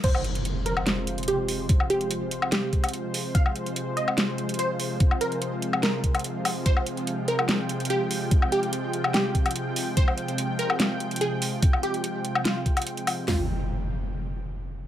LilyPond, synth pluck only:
\new Staff \with { instrumentName = "Synth pluck" } { \time 4/4 \key f \minor \tempo 4 = 145 c''4. bes'4. g'4~ | g'8 g'4. g'2 | f''4. ees''4. c''4~ | c''8 bes'4. bes'2 |
c''4. bes'4. g'4~ | g'8 g'4. g'2 | c''4. bes'4. aes'4~ | aes'8 g'4. f'2 |
f'8 r2. r8 | }